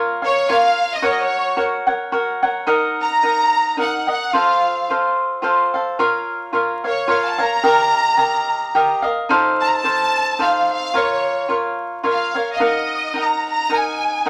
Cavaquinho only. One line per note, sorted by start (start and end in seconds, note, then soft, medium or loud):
0.00 0.22 F4 soft
0.00 0.22 A#4 medium
0.00 0.21 C#5 medium
0.00 0.21 F5 soft
0.22 0.48 A#4 soft
0.22 0.48 C#5 soft
0.22 0.48 F5 soft
0.49 1.02 F4 soft
0.49 1.02 A#4 medium
0.49 1.02 C#5 medium
0.49 1.02 F5 medium
1.02 1.56 F#4 medium
1.02 1.56 A#4 soft
1.02 1.57 C#5 medium
1.02 1.58 F#5 medium
1.56 1.88 F#4 medium
1.56 1.87 A#4 soft
1.56 1.86 C#5 soft
1.56 1.86 F#5 medium
1.87 2.11 A#4 soft
1.87 2.11 C#5 soft
1.87 2.12 F#5 soft
2.12 2.43 F#4 soft
2.12 2.43 A#4 medium
2.12 2.42 C#5 medium
2.12 2.41 F#5 medium
2.43 2.66 A#4 soft
2.43 2.67 C#5 soft
2.43 2.66 F#5 soft
2.67 3.22 D#4 medium
2.67 3.22 A#4 medium
2.67 3.23 D#5 medium
2.67 3.23 F#5 medium
3.23 3.76 D#4 soft
3.23 3.76 A#4 soft
3.23 3.77 D#5 soft
3.23 3.78 F#5 soft
3.77 4.07 D#4 medium
3.77 4.07 A#4 medium
3.77 4.07 D#5 medium
3.77 4.06 F#5 medium
4.07 4.33 A#4 soft
4.07 4.33 D#5 soft
4.07 4.33 F#5 soft
4.33 4.89 F4 medium
4.33 4.89 A4 medium
4.33 4.89 C5 medium
4.33 4.91 F5 medium
4.89 5.42 F4 soft
4.89 5.42 A4 soft
4.89 5.43 C5 soft
4.89 5.43 F5 medium
5.42 5.73 F4 medium
5.42 5.73 A4 medium
5.42 5.74 C5 soft
5.42 5.73 F5 medium
5.74 5.99 A4 soft
5.74 5.99 C5 soft
5.74 5.99 F5 soft
5.99 6.52 F4 medium
5.99 6.53 A#4 medium
5.99 6.53 C#5 medium
5.99 6.55 F5 medium
6.53 6.84 F4 soft
6.53 6.84 A#4 medium
6.53 6.83 C#5 medium
6.53 6.83 F5 medium
6.84 7.07 A#4 soft
6.84 7.07 C#5 soft
6.84 7.07 F5 soft
7.07 7.38 F4 medium
7.07 7.39 A#4 medium
7.07 7.38 C#5 medium
7.07 7.37 F5 medium
7.38 7.62 A#4 soft
7.38 7.63 C#5 soft
7.38 7.62 F5 soft
7.63 8.15 G4 medium
7.63 8.16 A#4 medium
7.63 8.18 D#5 medium
7.63 8.18 F5 medium
8.17 8.73 G4 soft
8.17 8.74 A#4 medium
8.17 8.75 D#5 medium
8.17 8.75 F5 medium
8.75 9.05 G4 medium
8.75 9.03 A#4 medium
8.75 9.02 D#5 medium
8.75 9.01 F5 medium
9.02 9.29 A#4 soft
9.02 9.29 D#5 soft
9.02 9.29 F5 soft
9.29 9.83 D#4 medium
9.29 9.83 A4 medium
9.29 9.84 C5 medium
9.29 9.84 F5 medium
9.84 10.38 D#4 soft
9.84 10.38 A4 soft
9.84 10.39 C5 medium
9.84 10.40 F5 soft
10.39 10.93 D#4 soft
10.39 10.94 A4 medium
10.39 10.95 C5 medium
10.39 10.94 F5 medium
10.94 11.47 F4 medium
10.94 11.49 A#4 medium
10.94 11.49 C#5 medium
10.94 11.49 F5 medium
11.49 12.02 F4 soft
11.49 12.03 A#4 soft
11.49 12.03 C#5 medium
11.49 12.04 F5 soft
12.03 12.35 F4 medium
12.03 12.34 A#4 soft
12.03 12.34 C#5 medium
12.03 12.33 F5 medium
12.34 12.59 A#4 soft
12.34 12.60 C#5 soft
12.34 12.60 F5 soft
12.60 13.12 D#4 medium
12.60 13.15 A#4 medium
12.60 13.14 D#5 medium
12.60 13.16 F#5 medium
13.14 13.68 D#4 medium
13.14 13.70 A#4 soft
13.14 13.69 D#5 soft
13.14 13.70 F#5 soft
13.69 14.24 D#4 soft
13.69 14.26 A#4 soft
13.69 14.25 D#5 medium
13.69 14.26 F#5 soft
14.26 14.29 D#4 medium
14.26 14.29 A#4 medium
14.26 14.29 D#5 medium
14.26 14.29 F#5 medium